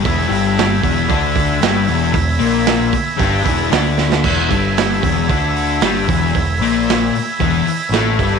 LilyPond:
<<
  \new Staff \with { instrumentName = "Transistor combo organ" } { \time 4/4 \key e \mixolydian \tempo 4 = 114 << { <e'' gis'' b''>1~ | <e'' gis'' b''>1 | <e'' gis'' b''>1~ | <e'' gis'' b''>1 | } \\ { r1 | r2 r8 e''8 gis''8 b''8 | r1 | r1 | } >> }
  \new Staff \with { instrumentName = "Distorted electric guitar" } { \clef bass \time 4/4 \key e \mixolydian <e, e>8 <g, g>4 <e, e>8 <d d'>4 <g, g>8 <e, e>8 | e,8 <ais, ais>4 r8 <g, g>8 <e, e>8 <d d'>4 | <e, e>8 <g, g>4 <e, e>8 <d d'>4 <g, g>8 <e, e>8 | e,8 <ais, ais>4 r8 <e, e>8 r8 <a, a>8 <g, g>8 | }
  \new Staff \with { instrumentName = "Picked electric bass" } { \clef bass \time 4/4 \key e \mixolydian e,,8 g,,4 e,,8 d,4 g,,8 e,,8 | e,,8 ais,,4 r8 g,,8 e,,8 d,4 | e,,8 g,,4 e,,8 d,4 g,,8 e,,8 | e,,8 ais,,4 r8 e,,8 r8 a,,8 g,,8 | }
  \new DrumStaff \with { instrumentName = "Drums" } \drummode { \time 4/4 <hho bd>8 hho8 <hho sn>8 <hho bd>8 <hho bd>8 <hho bd>8 <hho sn>8 hho8 | <hho bd>8 hho8 <hho sn>8 <hho bd>8 <hho bd>8 <hho bd>8 <hho sn>8 sn16 sn16 | <cymc bd>8 <hho bd>8 <hho sn>8 <hho bd>8 <hho bd>8 hho8 <hho sn>8 <hho bd>8 | <hho bd>8 hho8 <hho sn>8 hho8 <hho bd>8 hho8 <hho sn>8 <hho bd>8 | }
>>